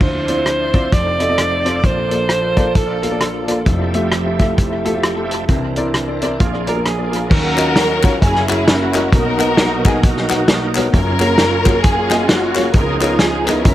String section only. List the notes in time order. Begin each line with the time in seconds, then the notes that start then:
7.30 C#4 F#4 A#4
8.22 C#4 E4 G#4
8.49 G#4
8.67 A#3 C#4 F#4
9.13 D#4 F#4 A#4
9.86 G#4
10.04 A#3 D#4 F#4
10.95 C#4 F4 A#4
11.82 C#4 F4 G#4
12.28 A#3 C#4 F#4
12.73 D#4 F4 A#4
13.01 A#4
13.19 G#4
13.47 C#4 E4 A#4